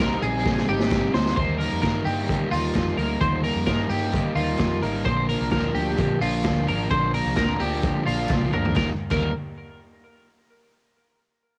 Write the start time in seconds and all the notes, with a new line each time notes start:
Already playing: C2
0.00 C3 G3 C4 D#4 A#4, kick, clap
0.22 A#1 G3 C4 D#4 G#4, open hi-hat
0.44 C3 G3 C4 D#4, kick, snare
0.57 snare
0.67 G#1 G3 C4 D#4 G4
0.80 snare
0.90 C3 G3 C4 D#4, kick, snare, clap
1.13 D2 G3 C4 D#4 C5, snare
1.26 snare
1.36 D#2 D#3 G3 A#3 D#4 C5, kick, closed hi-hat
1.58 A#3 D#4 A#4, open hi-hat
1.62 G3
1.72 F2
1.82 G2 D#3 G3 A#3 D#4 A#4, kick, snare, clap, closed hi-hat
2.05 G2 G3 A#3 D#4 G4, open hi-hat
2.28 D#3 G3 A#3 D#4, kick, clap, closed hi-hat
2.51 D#2 G3 A#3 D#4 F4, open hi-hat
2.75 F2 D#3 G3 A#3 D#4, kick, snare, clap, closed hi-hat
2.97 D2 G3 A#3 D#4 A#4, open hi-hat
3.20 D#2 D#3 G3 A#3 D#4 C5, kick, closed hi-hat
3.43 G3 A#3 D#4 A#4, open hi-hat
3.55 F2
3.66 G2 D#3 G3 A#3 D#4 A#4, kick, snare, clap, closed hi-hat
3.89 G2 G3 A#3 D#4 G4, open hi-hat
4.12 D#3 G3 A#3 D#4, kick, clap, closed hi-hat
4.35 D#2 G3 A#3 D#4 F4, open hi-hat
4.58 F2 D#3 G3 A#3 D#4, kick, snare, clap, closed hi-hat
4.82 G#1 G3 A#3 D#4 A#4, open hi-hat
5.05 A#1 A#2 D3 F3 A#3 D4 C5, kick, closed hi-hat
5.28 F3 A#3 D4 A#4, open hi-hat
5.40 C2
5.51 D2 A#2 D3 F3 A#3 D4 A#4, kick, snare, clap, closed hi-hat
5.74 D2 F3 A#3 D4 G4, open hi-hat
5.97 A#2 D3 F3 A#3 D4, kick, clap, closed hi-hat
6.20 A#1 F3 A#3 D4 F4, open hi-hat
6.43 D2 A#2 D3 F3 A#3 D4, kick, snare, clap, closed hi-hat
6.67 G#1 F3 A#3 D4 A#4, open hi-hat
6.90 A#1 A#2 D3 F3 A#3 D4 C5, kick, closed hi-hat
7.13 F3 A#3 D4 A#4, open hi-hat
7.25 C2
7.36 D2 A#2 D3 F3 A#3 D4 A#4, kick, snare, clap, closed hi-hat
7.59 D2 F3 A#3 D4 G4, open hi-hat
7.83 D3 F3 A#3 D4, kick, clap, closed hi-hat
8.06 A#1 F3 A#3 D4 F4, open hi-hat
8.29 C2 A#2 D3 F3 A#3 D4, kick, snare, clap
8.41 high tom
8.53 D2 F3 A#3 D4 A#4, mid tom
8.65 floor tom
8.75 D#2 D#3 G3 A#3 D#4 A#4, kick, snare, clap
9.10 D#2 D#3 G3 A#3 D#4 A#4, kick, clap, crash